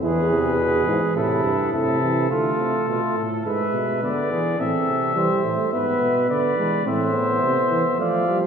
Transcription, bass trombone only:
0.02 0.86 E2 loud
0.87 1.00 G#2 medium
1.16 1.43 A2 medium
1.44 1.72 G2 medium
1.73 2.29 C3 medium
2.31 2.58 D3 medium
2.59 2.72 C3 medium
2.88 3.01 B2 medium
3.17 3.45 A2 medium
3.46 3.73 G#2 medium
3.74 4.02 B2 medium
4.03 4.33 D3 medium
4.31 4.59 E3 medium
4.59 4.72 A2 medium
4.87 5.15 C3 medium
5.16 5.29 E3 medium
5.44 5.57 A2 medium
5.73 6.01 G#2 medium
6.02 6.29 B2 medium
6.30 6.60 D3 medium
6.58 6.86 E3 medium
6.87 7.42 A2 medium
7.43 7.56 C3 medium
7.71 7.84 E3 medium
8.00 8.47 F3 medium

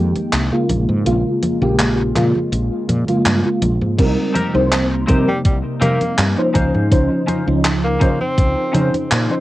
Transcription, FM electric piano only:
0.00 0.47 D#3 medium
0.00 0.47 G#3 medium
0.00 0.47 A#3 medium
0.00 0.47 G4 medium
0.51 1.01 C#3 medium
0.51 1.02 G#3 medium
0.51 1.02 A#3 medium
0.51 1.02 F4 loud
1.05 1.57 C#3 medium
1.05 1.57 G#3 medium
1.05 1.57 A#3 medium
1.05 1.57 F4 loud
1.61 2.11 C#3 medium
1.61 2.11 G#3 medium
1.61 2.12 A#3 medium
1.61 2.12 G4 loud
2.15 2.35 C#3 loud
2.15 2.36 G#3 medium
2.15 2.36 A#3 medium
2.15 2.36 F4 loud
3.07 3.40 C#3 medium
3.07 3.40 G#3 medium
3.07 3.40 A#3 medium
3.07 3.40 F4 loud
3.44 3.94 C#3 medium
3.44 3.94 G#3 medium
3.44 3.94 A#3 medium
3.44 3.95 F4 medium
3.98 4.49 G3 loud
3.98 4.50 C4 medium
3.98 4.50 D#4 medium
3.98 4.50 A#4 loud
4.54 5.04 G3 loud
4.54 5.04 C4 medium
4.54 5.04 D#4 medium
4.54 5.05 C5 loud
5.08 5.28 G3 loud
5.08 5.28 C4 medium
5.08 5.29 D#4 medium
5.08 5.29 A#4 loud
5.81 6.33 G3 medium
5.81 6.33 C4 medium
5.81 6.33 D#4 medium
5.81 6.33 A#4 medium
6.37 6.87 F3 medium
6.37 6.87 C#4 medium
6.37 6.87 D#4 medium
6.37 6.88 C5 loud
6.91 7.42 F3 loud
6.91 7.43 C#4 medium
6.91 7.43 D#4 medium
6.91 7.43 C5 loud
7.46 7.96 F3 loud
7.46 7.97 C#4 medium
7.46 7.97 D#4 medium
8.01 8.21 F3 loud
8.01 8.21 C#4 medium
8.01 8.21 D#4 medium
8.01 8.22 C5 loud
8.74 9.25 F3 medium
8.74 9.25 C#4 medium
8.74 9.26 D#4 medium
8.74 9.26 C5 medium
9.29 9.40 F3 medium
9.29 9.40 C#4 medium
9.29 9.40 D#4 medium
9.29 9.40 C5 loud

